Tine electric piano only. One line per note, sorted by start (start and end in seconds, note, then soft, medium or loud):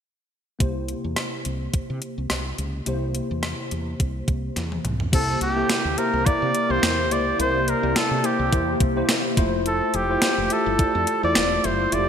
0.59 1.41 C3 medium
0.59 2.82 A#3 medium
0.59 2.82 E4 medium
0.59 2.83 G4 medium
0.59 2.83 C5 medium
2.86 3.68 C3 medium
2.86 4.80 A#3 medium
2.86 4.81 E4 medium
2.86 4.81 G4 medium
2.86 4.82 C5 medium
5.12 5.94 C3 medium
5.12 5.53 A#3 medium
5.12 5.53 E4 medium
5.12 5.53 G4 medium
5.12 5.53 C5 medium
5.56 5.94 A#3 medium
5.56 5.95 E4 medium
5.56 5.95 G4 medium
5.56 5.95 A4 medium
5.98 6.24 A#3 medium
5.98 6.24 E4 medium
5.98 6.24 G4 medium
5.98 6.25 C5 medium
6.25 6.66 A#3 medium
6.25 6.66 E4 medium
6.25 6.66 G4 medium
6.25 6.67 D5 medium
6.69 7.07 A#3 medium
6.69 7.08 E4 medium
6.69 7.08 G4 medium
6.69 7.08 A#4 medium
7.10 7.37 A#3 medium
7.10 7.37 E4 medium
7.10 7.38 G4 medium
7.10 7.38 C5 medium
7.39 8.20 C3 medium
7.39 7.79 A#3 medium
7.39 7.79 E4 medium
7.39 7.80 G4 medium
7.39 7.80 A#4 medium
7.82 8.21 A#3 medium
7.82 8.21 E4 medium
7.82 8.21 G4 medium
7.82 8.21 D5 medium
8.23 8.50 A#3 medium
8.23 8.50 E4 medium
8.23 8.50 G4 medium
8.23 8.50 C5 medium
8.52 8.92 A#3 medium
8.52 8.93 E4 medium
8.52 8.93 G4 medium
8.52 8.93 C5 medium
8.96 9.34 A#3 medium
8.96 9.34 E4 medium
8.96 9.35 G4 medium
8.96 9.35 C5 medium
9.37 10.03 A3 medium
9.37 10.03 E4 medium
9.37 10.04 F4 medium
9.37 10.04 C5 loud
10.09 10.47 A3 medium
10.09 10.48 E4 medium
10.09 10.48 F4 medium
10.09 10.48 C5 medium
10.51 10.77 A3 medium
10.51 10.77 E4 medium
10.51 10.77 F4 medium
10.51 10.78 G4 medium
10.79 11.19 A3 medium
10.79 11.19 E4 medium
10.79 11.20 F4 medium
10.79 11.20 D5 medium
11.23 11.61 A3 medium
11.23 11.61 E4 medium
11.23 11.61 F4 medium
11.23 11.61 C5 medium
11.64 11.90 A3 medium
11.64 11.90 E4 medium
11.64 11.91 F4 medium
11.64 11.91 A4 medium
11.92 12.09 A3 medium
11.92 12.09 E4 medium
11.92 12.09 F4 medium
11.92 12.09 G4 medium